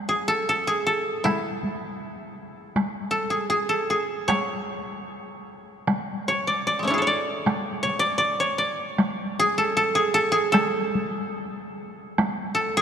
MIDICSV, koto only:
0, 0, Header, 1, 2, 480
1, 0, Start_track
1, 0, Tempo, 782269
1, 766, Time_signature, 2, 2, 24, 8
1, 766, Tempo, 758534
1, 2686, Tempo, 792602
1, 4606, Tempo, 767263
1, 6046, Tempo, 807537
1, 7867, End_track
2, 0, Start_track
2, 0, Title_t, "Koto"
2, 0, Program_c, 0, 107
2, 53, Note_on_c, 0, 68, 68
2, 171, Note_on_c, 0, 69, 77
2, 208, Note_off_c, 0, 68, 0
2, 298, Note_off_c, 0, 69, 0
2, 300, Note_on_c, 0, 69, 76
2, 413, Note_on_c, 0, 68, 72
2, 450, Note_off_c, 0, 69, 0
2, 531, Note_on_c, 0, 69, 70
2, 568, Note_off_c, 0, 68, 0
2, 761, Note_on_c, 0, 64, 69
2, 1728, Note_off_c, 0, 69, 0
2, 1943, Note_on_c, 0, 69, 64
2, 2066, Note_on_c, 0, 68, 60
2, 2104, Note_off_c, 0, 69, 0
2, 2187, Note_off_c, 0, 68, 0
2, 2189, Note_on_c, 0, 68, 66
2, 2193, Note_off_c, 0, 64, 0
2, 2312, Note_on_c, 0, 69, 68
2, 2350, Note_off_c, 0, 68, 0
2, 2444, Note_on_c, 0, 68, 65
2, 2482, Note_off_c, 0, 69, 0
2, 2683, Note_on_c, 0, 73, 79
2, 3648, Note_off_c, 0, 68, 0
2, 3687, Note_off_c, 0, 73, 0
2, 3896, Note_on_c, 0, 73, 65
2, 4013, Note_on_c, 0, 74, 69
2, 4049, Note_off_c, 0, 73, 0
2, 4129, Note_off_c, 0, 74, 0
2, 4131, Note_on_c, 0, 74, 72
2, 4206, Note_on_c, 0, 56, 29
2, 4228, Note_on_c, 0, 57, 28
2, 4237, Note_on_c, 0, 61, 34
2, 4256, Note_on_c, 0, 73, 73
2, 4264, Note_on_c, 0, 62, 38
2, 4273, Note_off_c, 0, 74, 0
2, 4273, Note_on_c, 0, 64, 41
2, 4294, Note_on_c, 0, 68, 42
2, 4300, Note_off_c, 0, 56, 0
2, 4319, Note_on_c, 0, 69, 47
2, 4330, Note_off_c, 0, 57, 0
2, 4340, Note_off_c, 0, 73, 0
2, 4343, Note_on_c, 0, 73, 49
2, 4374, Note_on_c, 0, 74, 67
2, 4379, Note_off_c, 0, 62, 0
2, 4410, Note_off_c, 0, 61, 0
2, 4838, Note_off_c, 0, 73, 0
2, 4841, Note_on_c, 0, 73, 70
2, 4878, Note_off_c, 0, 74, 0
2, 4944, Note_on_c, 0, 74, 81
2, 4982, Note_off_c, 0, 73, 0
2, 5058, Note_off_c, 0, 74, 0
2, 5061, Note_on_c, 0, 74, 77
2, 5198, Note_on_c, 0, 73, 83
2, 5236, Note_off_c, 0, 74, 0
2, 5313, Note_on_c, 0, 74, 68
2, 5350, Note_off_c, 0, 73, 0
2, 5500, Note_off_c, 0, 69, 0
2, 5516, Note_off_c, 0, 68, 0
2, 5678, Note_off_c, 0, 64, 0
2, 5821, Note_on_c, 0, 68, 82
2, 5936, Note_on_c, 0, 69, 82
2, 5974, Note_off_c, 0, 68, 0
2, 6051, Note_off_c, 0, 69, 0
2, 6053, Note_on_c, 0, 69, 86
2, 6163, Note_on_c, 0, 68, 85
2, 6198, Note_off_c, 0, 69, 0
2, 6276, Note_on_c, 0, 69, 93
2, 6301, Note_off_c, 0, 74, 0
2, 6311, Note_off_c, 0, 68, 0
2, 6381, Note_on_c, 0, 68, 82
2, 6416, Note_off_c, 0, 69, 0
2, 6502, Note_on_c, 0, 69, 90
2, 6537, Note_off_c, 0, 68, 0
2, 7633, Note_off_c, 0, 69, 0
2, 7705, Note_on_c, 0, 69, 78
2, 7838, Note_on_c, 0, 68, 83
2, 7867, Note_off_c, 0, 68, 0
2, 7867, Note_off_c, 0, 69, 0
2, 7867, End_track
0, 0, End_of_file